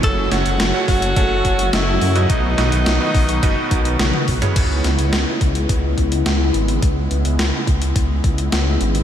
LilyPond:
<<
  \new Staff \with { instrumentName = "Electric grand piano" } { \time 4/4 \key cis \minor \tempo 4 = 106 <a cis' fis' a' cis''>8 <a cis' fis' a' cis''>16 r8 <a cis' fis' a' cis''>8. <a cis' fis' a' cis''>4 <a cis' fis' a' dis''>16 r8 <b, b dis' fis' b' dis''>16~ | <b, b dis' fis' b' dis''>8 <b, b dis' fis' b' dis''>16 r8 <b, b dis' fis' b' dis''>8. <b, b dis' fis' b' dis''>4 <b, b dis' fis' b' fis''>16 r8 <cis cis' e' gis' b' cis''>16~ | <cis cis' e' gis' b' cis''>8 r2. r8 | r1 | }
  \new Staff \with { instrumentName = "Tenor saxophone" } { \time 4/4 \key cis \minor a'8 fis'4 fis'4. e'4 | dis'2.~ dis'8 r8 | r1 | r1 | }
  \new Staff \with { instrumentName = "Analog synth pad" } { \time 4/4 \key cis \minor <cis fis a fis'>1 | <dis b fis'>1 | <cis gis b e'>1~ | <cis gis b e'>1 | }
  \new Staff \with { instrumentName = "Detuned saw bass" } { \clef bass \time 4/4 \key cis \minor fis,,8 fis,,16 fis,,16 fis,,16 r16 fis,,8 fis,,8 fis,,8 fis,,8 fis,8 | b,,8 b,,16 b,,16 b,,16 r16 b,,8 fis,,16 r16 b,,8 b,,16 r16 b,,16 r16 | cis,8 cis,16 cis,16 cis,16 r16 cis,8 cis,8 cis,8 cis,8 gis,,8 | cis,8 cis,16 cis,16 cis,16 r16 cis,8 cis,8 cis,8 cis,8 gis,,8 | }
  \new DrumStaff \with { instrumentName = "Drums" } \drummode { \time 4/4 <hh bd>8 <hh sn>16 hh16 <hh sn>8 <hho bd>16 hh16 <hh bd>8 <hh bd>16 hh16 <hh sn>8 hho16 hh16 | <hh bd>8 <hh sn>16 hh16 <hh sn>8 <hho bd>16 hh16 <hh bd>8 <hh bd>16 hh16 <hh sn tommh>16 tommh16 <hho bd>16 <hh toml>16 | <cymc hh bd>8 <hh sn>16 hh16 <hh sn>8 <hh bd>16 hh16 <hh bd>8 <hh bd>16 hh16 <hh sn>8 hh16 hh16 | <hh bd>8 hh16 hh16 <hh sn>8 <hh bd>16 hh16 <hh bd>8 <hh bd>16 hh16 <hh sn>8 hh16 hh16 | }
>>